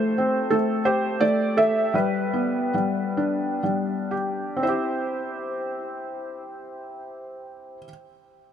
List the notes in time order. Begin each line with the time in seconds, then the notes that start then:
Already playing: A3 C5
0.18 C4
0.51 A3 A4
0.85 G4 C5
1.21 A3 D5
1.57 A4 E5
1.94 G3 B4
2.34 B3
2.74 G3
3.17 D4
3.63 G3
4.11 G4
4.57 C4
4.63 E4 C5
4.68 G4